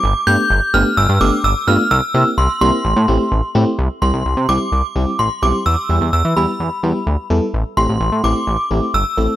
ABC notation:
X:1
M:4/4
L:1/16
Q:1/4=128
K:C
V:1 name="Synth bell"
d'2 g'4 f'2 e'2 d'2 e'2 f'2 | e'4 c'2 c'6 z4 | z2 c'4 d'6 c'2 d'2 | e'4 e'2 b6 z4 |
z2 c'4 d'6 e'4 |]
V:2 name="FM electric piano"
z2 [A,B,DG]2 z2 [A,B,DG]2 z2 [A,B,DG]2 z2 [A,B,DF]2 | z2 [_B,CEG]2 z2 [B,CEG]2 z2 [A,CEG]2 z2 [A,CEG]2 | z2 [G,CEG]2 z2 [G,CEG]2 z2 [G,CEG]2 z2 [G,CEG]2 | z2 [G,B,EG]2 z2 [G,B,EG]2 z2 [G,B,EG]2 z2 [G,B,EA]2 |
z2 [A,CEG]2 z2 [A,CEG]2 z2 [A,CEG]2 z2 [A,CEA]2 |]
V:3 name="Analog synth bass" clef=bass
G,,, z G,, z G,,, z G,,, z G,,, G,, G,,, z G,,, z G,, z | C,, z C, z C,, z C,, z A,,, A,, A,,, z A,,, z A,, z | C,, z C,, C,, C,, C, C,, z C,, z C,, z A,,, z B,,, z | E,, z E,, E,, E,, E, E,, z E,, z E,, z D,, z E,, z |
A,,, z A,,, A,,, A,,, A,, A,,, z A,,, z A,,, z G,,, z A,,, z |]